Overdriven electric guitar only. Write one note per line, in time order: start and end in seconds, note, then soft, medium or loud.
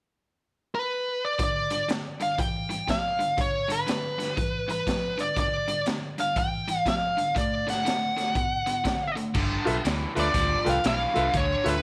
1.39 1.68 G2 medium
1.39 1.68 D3 medium
1.71 1.87 G2 medium
1.71 1.87 D3 medium
1.88 2.17 G2 medium
1.88 2.17 D3 medium
2.20 2.37 G2 medium
2.20 2.37 D3 medium
2.38 2.67 G2 medium
2.38 2.67 E3 medium
2.69 2.86 G2 medium
2.69 2.86 E3 medium
2.87 3.16 G2 medium
2.87 3.16 F3 medium
3.19 3.36 G2 medium
3.19 3.36 D3 medium
3.37 3.66 G2 medium
3.37 3.66 D3 medium
3.68 3.85 G2 medium
3.68 3.86 D3 medium
3.86 4.15 G2 medium
3.86 4.16 D3 medium
4.18 4.35 G2 medium
4.18 4.35 D3 medium
4.37 4.65 G2 medium
4.37 4.66 E3 medium
4.68 4.85 G2 medium
4.68 4.85 E3 medium
4.87 5.15 G2 medium
4.87 5.15 F3 medium
5.18 5.34 G2 medium
5.18 5.35 D3 medium
5.36 5.65 G2 medium
5.36 5.65 D3 medium
5.68 5.84 G2 medium
5.68 5.85 D3 medium
5.87 6.15 G2 medium
5.87 6.15 D3 medium
6.18 6.34 G2 medium
6.18 6.35 D3 medium
6.36 6.64 G2 medium
6.36 6.65 E3 medium
6.68 6.84 G2 medium
6.68 6.84 E3 medium
6.86 7.14 G2 medium
6.86 7.15 F3 medium
7.17 7.34 G2 medium
7.17 7.34 D3 medium
7.35 7.64 D3 medium
7.35 7.64 A3 medium
7.67 7.83 D3 medium
7.67 7.84 A3 medium
7.85 8.14 D3 medium
7.85 8.14 A3 medium
8.17 8.33 D3 medium
8.17 8.34 A3 medium
8.35 8.64 D3 medium
8.35 8.64 B3 medium
8.66 8.83 D3 medium
8.66 8.83 B3 medium
8.84 9.13 D3 medium
8.84 9.13 C4 medium
9.16 9.32 D3 medium
9.16 9.33 A3 medium
9.34 9.81 G2 medium
9.34 9.81 D3 medium
9.84 10.13 G2 medium
9.84 10.13 E3 medium
10.16 10.32 G2 medium
10.16 10.33 D3 medium
10.33 10.80 G2 medium
10.33 10.80 F3 medium
10.84 11.13 G2 medium
10.84 11.13 E3 medium
11.16 11.32 G2 medium
11.16 11.32 D3 medium
11.34 11.80 G2 medium
11.34 11.80 D3 medium